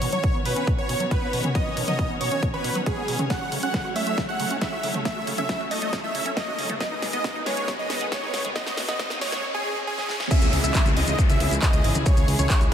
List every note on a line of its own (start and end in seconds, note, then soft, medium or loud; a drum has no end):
0.00 0.08 B2 loud
0.00 3.27 D#3 medium
0.00 3.27 B3 medium
0.00 6.77 C#4 medium
0.00 3.26 F#4 medium
0.00 6.77 C#5 medium
0.00 open hi-hat loud
0.00 riser medium
0.13 0.19 F#3 loud
0.13 0.36 C#5 loud
0.13 closed hi-hat medium
0.23 0.32 B2 loud
0.23 kick loud
0.23 closed hi-hat medium
0.34 0.43 B3 medium
0.45 0.54 B2 medium
0.45 0.69 B4 medium
0.45 open hi-hat medium
0.56 0.65 C#4 medium
0.56 closed hi-hat medium
0.67 0.76 B2 loud
0.67 kick loud
0.67 closed hi-hat medium
0.78 0.82 D#3 medium
0.78 1.02 C#5 medium
0.89 0.95 B2 loud
0.89 open hi-hat loud
1.00 1.06 F#3 loud
1.00 closed hi-hat medium
1.11 1.17 B2 medium
1.11 1.42 B4 medium
1.11 kick loud
1.11 closed hi-hat medium
1.22 1.28 B3 medium
1.33 1.42 B2 medium
1.33 open hi-hat medium
1.44 1.50 C#4 medium
1.44 closed hi-hat medium
1.44 mid tom medium
1.55 1.59 B2 medium
1.55 1.78 D#5 medium
1.55 kick loud
1.55 closed hi-hat medium
1.66 1.70 B3 medium
1.77 1.83 B2 loud
1.77 open hi-hat loud
1.88 1.94 F#3 loud
1.88 2.11 D#5 medium
1.88 closed hi-hat medium
1.88 mid tom medium
1.99 2.08 B2 loud
1.99 kick loud
1.99 closed hi-hat medium
2.10 2.19 B3 medium
2.21 2.30 B2 medium
2.21 2.44 C#5 loud
2.21 open hi-hat medium
2.31 2.40 C#4 medium
2.31 closed hi-hat medium
2.42 2.51 B2 loud
2.42 kick loud
2.42 closed hi-hat medium
2.53 2.57 D#3 medium
2.53 2.77 B4 loud
2.64 2.70 B2 loud
2.64 open hi-hat loud
2.75 2.81 F#3 loud
2.75 closed hi-hat medium
2.86 2.92 B2 medium
2.86 3.18 G#4 medium
2.86 kick loud
2.86 closed hi-hat medium
2.97 3.03 B3 medium
3.08 3.17 B2 medium
3.08 open hi-hat medium
3.19 3.25 C#4 medium
3.19 closed hi-hat medium
3.19 mid tom medium
3.30 3.34 C#3 medium
3.30 6.77 F#3 medium
3.30 6.77 A3 medium
3.30 6.77 A4 medium
3.30 3.54 F#5 loud
3.30 kick loud
3.30 snare soft
3.30 closed hi-hat medium
3.41 3.45 F#4 medium
3.52 3.58 C#3 loud
3.52 open hi-hat loud
3.63 3.69 C#4 loud
3.63 3.86 F#5 medium
3.63 closed hi-hat medium
3.74 3.83 C#3 loud
3.74 kick loud
3.74 snare soft
3.74 closed hi-hat medium
3.85 3.94 F#4 medium
3.96 4.05 A3 loud
3.96 4.19 E5 medium
3.96 open hi-hat medium
4.07 4.16 A3 medium
4.07 closed hi-hat medium
4.18 4.27 C#3 loud
4.18 kick loud
4.18 snare medium
4.18 closed hi-hat medium
4.29 4.32 A3 medium
4.29 4.52 F#5 loud
4.40 4.46 C#3 loud
4.40 open hi-hat loud
4.51 4.57 C#4 loud
4.51 closed hi-hat medium
4.61 4.68 C#3 medium
4.61 4.93 E5 medium
4.61 kick loud
4.61 snare medium
4.61 closed hi-hat medium
4.72 4.78 F#4 medium
4.83 4.92 C#3 medium
4.83 open hi-hat medium
4.94 5.00 A3 medium
4.94 closed hi-hat medium
4.94 mid tom medium
5.05 5.09 C#3 medium
5.05 5.29 E5 loud
5.05 kick loud
5.05 snare medium
5.05 closed hi-hat medium
5.16 5.20 F#4 medium
5.27 5.33 C#3 loud
5.27 open hi-hat medium
5.38 5.44 C#4 loud
5.38 5.62 E5 loud
5.38 closed hi-hat medium
5.38 mid tom medium
5.49 5.58 C#3 loud
5.49 kick loud
5.49 snare medium
5.49 closed hi-hat medium
5.60 5.69 F#4 medium
5.71 5.80 A3 loud
5.71 5.94 D#5 medium
5.71 open hi-hat medium
5.82 5.91 A3 loud
5.82 closed hi-hat medium
5.93 6.02 C#3 loud
5.93 kick loud
5.93 snare medium
5.93 closed hi-hat medium
6.04 6.07 A3 medium
6.04 6.27 E5 loud
6.15 6.21 C#3 loud
6.15 open hi-hat loud
6.26 6.32 C#4 loud
6.26 closed hi-hat medium
6.37 6.43 C#3 medium
6.37 6.68 D#5 medium
6.37 kick loud
6.37 snare medium
6.37 closed hi-hat medium
6.47 6.54 F#4 medium
6.59 6.68 C#3 medium
6.59 open hi-hat medium
6.70 6.76 A3 medium
6.70 closed hi-hat medium
6.70 mid tom medium
6.80 6.84 B2 medium
6.80 9.41 D#3 medium
6.80 9.41 G#3 medium
6.80 9.41 B3 medium
6.80 8.54 G#4 medium
6.80 9.41 B4 medium
6.80 7.04 D#5 loud
6.80 kick loud
6.80 snare medium
6.80 closed hi-hat medium
6.91 6.95 D#4 medium
7.02 7.08 B2 loud
7.02 snare medium
7.02 open hi-hat loud
7.13 7.19 B3 loud
7.13 7.37 D#5 loud
7.13 closed hi-hat medium
7.24 7.33 B2 loud
7.24 kick loud
7.24 snare medium
7.24 closed hi-hat medium
7.35 7.44 D#4 medium
7.46 7.55 G#3 loud
7.46 7.70 C#5 loud
7.46 snare medium
7.46 open hi-hat medium
7.57 7.66 G#3 loud
7.57 closed hi-hat medium
7.68 7.77 B2 loud
7.68 kick loud
7.68 snare medium
7.68 closed hi-hat medium
7.79 7.83 G#3 medium
7.79 8.02 D#5 medium
7.90 7.96 B2 loud
7.90 snare medium
7.90 open hi-hat loud
8.01 8.07 B3 loud
8.01 closed hi-hat medium
8.12 8.18 B2 medium
8.12 8.43 C#5 medium
8.12 kick loud
8.12 snare medium
8.12 closed hi-hat medium
8.23 8.29 D#4 medium
8.34 8.43 B2 medium
8.34 snare medium
8.34 open hi-hat medium
8.45 8.51 G#3 medium
8.45 closed hi-hat medium
8.45 mid tom medium
8.56 8.59 B2 medium
8.56 9.42 F#4 medium
8.56 8.79 D#5 loud
8.56 kick loud
8.56 snare medium
8.56 closed hi-hat medium
8.67 8.70 D#4 medium
8.67 snare medium
8.77 8.84 B2 loud
8.77 snare loud
8.77 open hi-hat loud
8.88 8.95 B3 loud
8.88 9.12 D#5 loud
8.88 snare medium
8.88 closed hi-hat medium
8.88 mid tom medium
8.99 9.08 B2 loud
8.99 kick loud
8.99 snare loud
8.99 closed hi-hat medium
9.10 9.19 D#4 medium
9.10 snare medium
9.21 9.30 G#3 loud
9.21 9.45 C#5 loud
9.21 snare loud
9.21 open hi-hat medium
9.32 9.41 G#3 loud
9.32 snare medium
9.32 closed hi-hat medium
9.54 9.78 G#4 loud
9.87 10.18 G#4 loud
9.98 snare medium
10.09 snare medium
10.20 snare medium
10.31 12.74 C#3 medium
10.31 12.74 E3 medium
10.31 12.74 G#3 medium
10.31 12.74 E4 medium
10.31 12.74 G#4 medium
10.31 10.54 E5 loud
10.31 kick loud
10.31 closed hi-hat medium
10.31 crash loud
10.31 downlifter medium
10.31 maracas medium
10.42 10.49 C#2 medium
10.42 closed hi-hat medium
10.42 maracas soft
10.53 10.60 C#2 medium
10.53 open hi-hat loud
10.64 10.71 C#2 medium
10.64 10.87 E5 loud
10.64 closed hi-hat medium
10.64 maracas medium
10.75 kick loud
10.75 clap loud
10.75 closed hi-hat medium
10.75 maracas medium
10.86 10.93 C#2 medium
10.86 closed hi-hat medium
10.86 maracas soft
10.96 11.04 C#2 medium
10.96 11.20 D#5 loud
10.96 open hi-hat medium
11.07 11.15 C#2 medium
11.07 closed hi-hat medium
11.07 maracas medium
11.19 kick loud
11.19 closed hi-hat medium
11.19 maracas medium
11.29 11.37 C#2 medium
11.29 11.53 E5 loud
11.29 closed hi-hat medium
11.29 maracas soft
11.40 11.48 C#2 medium
11.40 open hi-hat loud
11.51 11.59 C#2 medium
11.51 closed hi-hat medium
11.51 maracas medium
11.62 11.93 D#5 medium
11.62 kick loud
11.62 clap loud
11.62 closed hi-hat medium
11.62 maracas medium
11.73 11.81 C#2 medium
11.73 closed hi-hat medium
11.73 maracas soft
11.84 11.92 G#1 loud
11.84 open hi-hat medium
11.95 12.03 C#2 medium
11.95 closed hi-hat medium
11.95 mid tom medium
11.95 maracas medium
12.06 12.30 C#5 loud
12.06 kick loud
12.06 closed hi-hat medium
12.06 maracas medium
12.17 12.24 C#2 medium
12.17 closed hi-hat medium
12.17 maracas soft
12.28 12.35 C#2 loud
12.28 open hi-hat loud
12.39 12.46 C#2 loud
12.39 12.62 C#5 medium
12.39 closed hi-hat medium
12.39 mid tom medium
12.39 maracas medium
12.50 kick loud
12.50 clap loud
12.50 closed hi-hat medium
12.50 maracas medium
12.61 12.68 C#2 medium
12.61 closed hi-hat medium
12.61 maracas soft